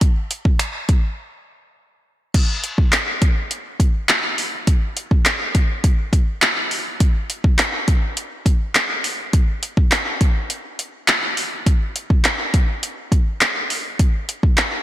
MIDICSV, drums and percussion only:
0, 0, Header, 1, 2, 480
1, 0, Start_track
1, 0, Tempo, 582524
1, 12, Time_signature, 4, 2, 24, 8
1, 12218, End_track
2, 0, Start_track
2, 0, Title_t, "Drums"
2, 11, Note_on_c, 9, 42, 90
2, 12, Note_on_c, 9, 36, 118
2, 93, Note_off_c, 9, 42, 0
2, 94, Note_off_c, 9, 36, 0
2, 253, Note_on_c, 9, 42, 79
2, 335, Note_off_c, 9, 42, 0
2, 372, Note_on_c, 9, 36, 94
2, 455, Note_off_c, 9, 36, 0
2, 490, Note_on_c, 9, 26, 105
2, 493, Note_on_c, 9, 42, 99
2, 572, Note_off_c, 9, 26, 0
2, 575, Note_off_c, 9, 42, 0
2, 731, Note_on_c, 9, 42, 70
2, 732, Note_on_c, 9, 36, 98
2, 814, Note_off_c, 9, 36, 0
2, 814, Note_off_c, 9, 42, 0
2, 1931, Note_on_c, 9, 36, 123
2, 1931, Note_on_c, 9, 42, 96
2, 1931, Note_on_c, 9, 49, 111
2, 2014, Note_off_c, 9, 36, 0
2, 2014, Note_off_c, 9, 42, 0
2, 2014, Note_off_c, 9, 49, 0
2, 2172, Note_on_c, 9, 42, 84
2, 2254, Note_off_c, 9, 42, 0
2, 2292, Note_on_c, 9, 36, 102
2, 2374, Note_off_c, 9, 36, 0
2, 2409, Note_on_c, 9, 39, 119
2, 2412, Note_on_c, 9, 42, 103
2, 2492, Note_off_c, 9, 39, 0
2, 2495, Note_off_c, 9, 42, 0
2, 2651, Note_on_c, 9, 42, 76
2, 2652, Note_on_c, 9, 36, 105
2, 2733, Note_off_c, 9, 42, 0
2, 2734, Note_off_c, 9, 36, 0
2, 2891, Note_on_c, 9, 42, 94
2, 2973, Note_off_c, 9, 42, 0
2, 3129, Note_on_c, 9, 36, 96
2, 3131, Note_on_c, 9, 42, 80
2, 3211, Note_off_c, 9, 36, 0
2, 3213, Note_off_c, 9, 42, 0
2, 3369, Note_on_c, 9, 39, 121
2, 3370, Note_on_c, 9, 42, 79
2, 3451, Note_off_c, 9, 39, 0
2, 3453, Note_off_c, 9, 42, 0
2, 3610, Note_on_c, 9, 46, 80
2, 3693, Note_off_c, 9, 46, 0
2, 3851, Note_on_c, 9, 36, 120
2, 3851, Note_on_c, 9, 42, 97
2, 3933, Note_off_c, 9, 42, 0
2, 3934, Note_off_c, 9, 36, 0
2, 4092, Note_on_c, 9, 42, 85
2, 4175, Note_off_c, 9, 42, 0
2, 4212, Note_on_c, 9, 36, 97
2, 4294, Note_off_c, 9, 36, 0
2, 4329, Note_on_c, 9, 39, 119
2, 4332, Note_on_c, 9, 42, 110
2, 4412, Note_off_c, 9, 39, 0
2, 4415, Note_off_c, 9, 42, 0
2, 4571, Note_on_c, 9, 42, 80
2, 4572, Note_on_c, 9, 36, 104
2, 4653, Note_off_c, 9, 42, 0
2, 4654, Note_off_c, 9, 36, 0
2, 4811, Note_on_c, 9, 42, 93
2, 4812, Note_on_c, 9, 36, 107
2, 4894, Note_off_c, 9, 36, 0
2, 4894, Note_off_c, 9, 42, 0
2, 5049, Note_on_c, 9, 36, 100
2, 5051, Note_on_c, 9, 42, 75
2, 5131, Note_off_c, 9, 36, 0
2, 5134, Note_off_c, 9, 42, 0
2, 5290, Note_on_c, 9, 39, 122
2, 5291, Note_on_c, 9, 42, 79
2, 5372, Note_off_c, 9, 39, 0
2, 5373, Note_off_c, 9, 42, 0
2, 5531, Note_on_c, 9, 46, 83
2, 5613, Note_off_c, 9, 46, 0
2, 5771, Note_on_c, 9, 42, 96
2, 5772, Note_on_c, 9, 36, 127
2, 5854, Note_off_c, 9, 36, 0
2, 5854, Note_off_c, 9, 42, 0
2, 6013, Note_on_c, 9, 42, 87
2, 6095, Note_off_c, 9, 42, 0
2, 6132, Note_on_c, 9, 36, 102
2, 6215, Note_off_c, 9, 36, 0
2, 6250, Note_on_c, 9, 39, 116
2, 6253, Note_on_c, 9, 42, 107
2, 6332, Note_off_c, 9, 39, 0
2, 6335, Note_off_c, 9, 42, 0
2, 6491, Note_on_c, 9, 42, 79
2, 6492, Note_on_c, 9, 36, 103
2, 6574, Note_off_c, 9, 42, 0
2, 6575, Note_off_c, 9, 36, 0
2, 6732, Note_on_c, 9, 42, 91
2, 6814, Note_off_c, 9, 42, 0
2, 6969, Note_on_c, 9, 36, 100
2, 6971, Note_on_c, 9, 42, 78
2, 7052, Note_off_c, 9, 36, 0
2, 7053, Note_off_c, 9, 42, 0
2, 7210, Note_on_c, 9, 39, 117
2, 7211, Note_on_c, 9, 42, 83
2, 7292, Note_off_c, 9, 39, 0
2, 7294, Note_off_c, 9, 42, 0
2, 7450, Note_on_c, 9, 46, 86
2, 7533, Note_off_c, 9, 46, 0
2, 7691, Note_on_c, 9, 42, 93
2, 7692, Note_on_c, 9, 36, 127
2, 7773, Note_off_c, 9, 42, 0
2, 7774, Note_off_c, 9, 36, 0
2, 7932, Note_on_c, 9, 42, 85
2, 8015, Note_off_c, 9, 42, 0
2, 8052, Note_on_c, 9, 36, 105
2, 8135, Note_off_c, 9, 36, 0
2, 8170, Note_on_c, 9, 39, 110
2, 8173, Note_on_c, 9, 42, 106
2, 8252, Note_off_c, 9, 39, 0
2, 8255, Note_off_c, 9, 42, 0
2, 8411, Note_on_c, 9, 42, 76
2, 8412, Note_on_c, 9, 36, 101
2, 8494, Note_off_c, 9, 42, 0
2, 8495, Note_off_c, 9, 36, 0
2, 8652, Note_on_c, 9, 42, 92
2, 8734, Note_off_c, 9, 42, 0
2, 8891, Note_on_c, 9, 42, 77
2, 8974, Note_off_c, 9, 42, 0
2, 9130, Note_on_c, 9, 39, 120
2, 9131, Note_on_c, 9, 42, 81
2, 9212, Note_off_c, 9, 39, 0
2, 9213, Note_off_c, 9, 42, 0
2, 9371, Note_on_c, 9, 46, 84
2, 9453, Note_off_c, 9, 46, 0
2, 9612, Note_on_c, 9, 36, 120
2, 9612, Note_on_c, 9, 42, 95
2, 9694, Note_off_c, 9, 36, 0
2, 9694, Note_off_c, 9, 42, 0
2, 9852, Note_on_c, 9, 42, 85
2, 9935, Note_off_c, 9, 42, 0
2, 9972, Note_on_c, 9, 36, 103
2, 10054, Note_off_c, 9, 36, 0
2, 10090, Note_on_c, 9, 39, 119
2, 10093, Note_on_c, 9, 42, 106
2, 10172, Note_off_c, 9, 39, 0
2, 10175, Note_off_c, 9, 42, 0
2, 10331, Note_on_c, 9, 42, 80
2, 10332, Note_on_c, 9, 36, 105
2, 10414, Note_off_c, 9, 36, 0
2, 10414, Note_off_c, 9, 42, 0
2, 10572, Note_on_c, 9, 42, 91
2, 10654, Note_off_c, 9, 42, 0
2, 10809, Note_on_c, 9, 36, 97
2, 10811, Note_on_c, 9, 42, 72
2, 10891, Note_off_c, 9, 36, 0
2, 10894, Note_off_c, 9, 42, 0
2, 11050, Note_on_c, 9, 39, 120
2, 11051, Note_on_c, 9, 42, 82
2, 11132, Note_off_c, 9, 39, 0
2, 11133, Note_off_c, 9, 42, 0
2, 11291, Note_on_c, 9, 46, 83
2, 11373, Note_off_c, 9, 46, 0
2, 11531, Note_on_c, 9, 42, 91
2, 11532, Note_on_c, 9, 36, 122
2, 11614, Note_off_c, 9, 36, 0
2, 11614, Note_off_c, 9, 42, 0
2, 11773, Note_on_c, 9, 42, 83
2, 11855, Note_off_c, 9, 42, 0
2, 11892, Note_on_c, 9, 36, 101
2, 11974, Note_off_c, 9, 36, 0
2, 12010, Note_on_c, 9, 39, 113
2, 12013, Note_on_c, 9, 42, 104
2, 12092, Note_off_c, 9, 39, 0
2, 12095, Note_off_c, 9, 42, 0
2, 12218, End_track
0, 0, End_of_file